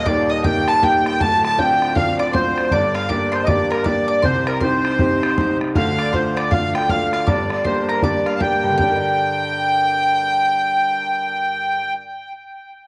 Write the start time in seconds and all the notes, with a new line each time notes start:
Already playing: D#1 D#2
0.04 A#3 D#4 G4 D5 D#5 D6, bodhran
0.29 D#5 D#6
0.44 A#3 D#4 G4 G5, bodhran
0.68 A5, bodhran
0.81 A#3 D#4 G4 G5, bodhran
1.06 G5, bodhran
1.20 D1 D2 A5, bodhran
1.44 A5, bodhran
1.58 C4 D4 F4 G5, bodhran
1.82 bodhran
1.95 C4 D4 F4 F5, bodhran
2.19 D5 D6, bodhran
2.33 C4 D4 F4 C5 C6, bodhran
2.58 bodhran
2.71 G1 G2 D5 D6, bodhran
2.94 F5, bodhran
3.09 A#3 D4 G4 D5 D6, bodhran
3.32 C5 C6, bodhran
3.44 D5 D#5 D6
3.48 A#3 D4 G4, bodhran
3.70 A#4 A#5, bodhran
3.84 A#3 D4 G4 D5 D6, bodhran
4.08 D5 D6
4.22 C2 C3 C5 C6, bodhran
4.47 A#4 A#5, bodhran
4.61 C4 D#4 G4 C5 C6, bodhran
4.85 bodhran
4.99 C4 D#4 G4, bodhran
5.23 bodhran
5.38 C4 D#4 G4, bodhran
5.61 bodhran
5.75 D2 D3 F5, bodhran
5.99 D5 D6, bodhran
6.13 A3 D4 F4 C5 C6, bodhran
6.36 D5 D6, bodhran
6.51 A3 D4 F4 F5, bodhran
6.75 G5, bodhran
6.89 A3 D4 F4 F5, bodhran
7.13 F5, bodhran
7.27 G1 G2 D5 D6, bodhran
7.50 D5, bodhran
7.65 A#3 D4 G4 C5 C6, bodhran
7.89 A#4 A#5, bodhran
8.02 A#3 D4 G4 D5 D6, bodhran
8.26 F5, bodhran
8.35 F5 A5
8.40 A#3 D4 G4 G5, bodhran
8.63 G2
8.70 D3
8.77 G3 G5, bodhran
8.83 D4
8.89 A#4
8.96 D5